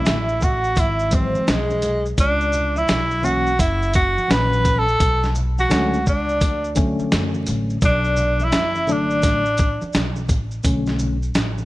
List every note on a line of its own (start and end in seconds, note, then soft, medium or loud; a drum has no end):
0.00 0.15 D3 medium
0.00 0.15 F#3 medium
0.00 0.15 A3 medium
0.00 0.15 C#4 medium
0.00 0.46 E4 medium
0.00 0.42 E5 medium
0.06 0.73 A1 medium
0.06 snare loud
0.06 closed hi-hat medium
0.06 maracas medium
0.29 maracas soft
0.41 0.81 F#4 medium
0.41 0.77 F#5 medium
0.41 kick medium
0.41 low conga medium
0.41 maracas soft
0.41 shaker medium
0.64 maracas soft
0.76 1.32 G#1 loud
0.76 1.16 E4 loud
0.76 1.12 E5 medium
0.76 kick medium
0.76 closed hi-hat medium
0.76 high conga soft
0.76 maracas medium
0.99 maracas soft
1.11 1.56 E3 medium
1.11 1.56 F#3 medium
1.11 1.56 G#3 medium
1.11 1.57 C4 medium
1.11 1.52 C4 medium
1.11 1.48 C5 medium
1.11 kick loud
1.11 closed hi-hat medium
1.11 shaker medium
1.11 maracas soft
1.35 muted upright bass stroke soft
1.35 high conga medium
1.35 maracas soft
1.47 2.14 B1 medium
1.47 2.07 G#3 medium
1.47 2.06 G#4 medium
1.47 snare loud
1.47 closed hi-hat medium
1.47 maracas medium
1.70 high conga medium
1.70 maracas soft
1.82 closed hi-hat medium
1.82 low conga medium
1.82 shaker medium
1.82 maracas soft
2.06 maracas soft
2.18 2.85 C#2 loud
2.18 2.80 D4 loud
2.18 2.72 D5 medium
2.18 kick loud
2.18 closed hi-hat medium
2.18 maracas medium
2.41 maracas soft
2.53 low conga soft
2.53 shaker medium
2.53 maracas soft
2.76 3.26 E4 loud
2.76 3.24 E5 medium
2.76 high conga soft
2.76 maracas soft
2.88 3.56 B1 medium
2.88 snare loud
2.88 closed hi-hat medium
2.88 maracas medium
3.11 maracas soft
3.22 3.50 E3 medium
3.22 3.51 F#3 medium
3.22 3.51 A#3 medium
3.22 3.52 C#4 medium
3.22 3.62 F#4 loud
3.22 3.59 F#5 medium
3.22 low conga medium
3.22 maracas soft
3.22 shaker medium
3.47 maracas soft
3.59 4.14 F#1 loud
3.59 3.95 E4 loud
3.59 3.95 E5 medium
3.59 kick medium
3.59 closed hi-hat medium
3.59 high conga soft
3.59 maracas medium
3.83 maracas medium
3.94 4.33 F#4 loud
3.94 4.27 F#5 medium
3.94 kick loud
3.94 closed hi-hat medium
3.94 shaker medium
3.94 maracas soft
4.17 muted upright bass stroke soft
4.17 high conga medium
4.17 maracas soft
4.28 4.96 A#1 loud
4.28 4.83 A#2 medium
4.28 4.82 E3 medium
4.28 4.83 F#3 medium
4.28 4.83 C#4 medium
4.28 4.80 B4 loud
4.28 4.77 B5 medium
4.28 snare loud
4.28 closed hi-hat medium
4.28 maracas medium
4.53 high conga medium
4.53 maracas soft
4.65 kick medium
4.65 closed hi-hat medium
4.65 low conga medium
4.65 shaker medium
4.65 maracas soft
4.78 5.30 A4 loud
4.78 5.29 A5 medium
4.88 maracas medium
5.00 5.67 B1 loud
5.00 kick loud
5.00 closed hi-hat medium
5.00 maracas medium
5.23 snare soft
5.23 maracas soft
5.35 low conga medium
5.35 shaker medium
5.35 maracas soft
5.58 6.04 F#4 loud
5.58 6.03 F#5 medium
5.58 high conga medium
5.58 maracas medium
5.70 6.38 C#2 medium
5.70 5.98 D3 medium
5.70 5.98 F#3 medium
5.70 5.99 A3 medium
5.70 5.99 C#4 medium
5.70 snare loud
5.70 closed hi-hat medium
5.70 maracas medium
5.94 maracas soft
6.06 6.74 D4 medium
6.06 6.73 D5 medium
6.06 kick medium
6.06 low conga medium
6.06 maracas soft
6.06 shaker medium
6.29 maracas soft
6.41 6.96 D2 medium
6.41 kick medium
6.41 closed hi-hat medium
6.41 high conga medium
6.41 maracas medium
6.64 maracas soft
6.75 7.77 D3 medium
6.75 7.77 F#3 medium
6.75 7.77 A3 medium
6.75 7.77 C#4 medium
6.75 kick loud
6.75 closed hi-hat medium
6.75 shaker medium
6.75 maracas soft
6.99 muted upright bass stroke medium
6.99 high conga medium
6.99 maracas soft
7.12 7.46 F#2 medium
7.12 snare loud
7.12 closed hi-hat medium
7.12 maracas medium
7.34 high conga medium
7.34 maracas soft
7.47 7.81 A1 medium
7.47 closed hi-hat medium
7.47 low conga medium
7.47 shaker medium
7.47 maracas soft
7.70 maracas soft
7.81 8.49 B1 loud
7.81 8.46 D4 loud
7.81 8.36 D5 medium
7.81 kick loud
7.81 closed hi-hat medium
7.81 maracas medium
8.04 maracas soft
8.16 low conga medium
8.16 shaker medium
8.16 maracas soft
8.40 8.89 E5 medium
8.40 high conga medium
8.40 maracas soft
8.44 8.93 E4 loud
8.52 9.20 F#1 medium
8.52 snare loud
8.52 closed hi-hat medium
8.52 maracas medium
8.75 high conga medium
8.75 maracas soft
8.87 9.41 D3 medium
8.87 9.42 F#3 medium
8.87 9.42 A3 medium
8.87 9.42 D4 medium
8.87 9.95 D5 medium
8.87 low conga medium
8.87 maracas soft
8.87 shaker medium
8.92 9.96 D4 loud
9.11 maracas soft
9.22 9.79 A1 medium
9.22 kick medium
9.22 snare soft
9.22 closed hi-hat medium
9.22 high conga soft
9.22 maracas medium
9.46 maracas soft
9.58 kick loud
9.58 closed hi-hat medium
9.58 shaker medium
9.58 maracas soft
9.81 muted upright bass stroke soft
9.81 high conga medium
9.81 maracas soft
9.93 10.29 B1 medium
9.93 snare loud
9.93 closed hi-hat medium
9.93 maracas medium
10.16 high conga medium
10.16 maracas soft
10.28 10.63 A1 medium
10.28 kick medium
10.28 closed hi-hat medium
10.28 low conga medium
10.28 maracas soft
10.28 shaker medium
10.51 maracas soft
10.63 11.32 B1 medium
10.63 11.15 D3 medium
10.63 11.15 A3 soft
10.63 11.16 C#4 medium
10.63 kick loud
10.63 closed hi-hat medium
10.63 maracas medium
10.86 snare soft
10.86 maracas soft
10.99 low conga medium
10.99 shaker medium
10.99 maracas soft
11.23 maracas soft
11.34 11.65 A1 medium
11.34 snare loud
11.34 closed hi-hat medium
11.34 maracas medium
11.58 high conga medium
11.58 maracas soft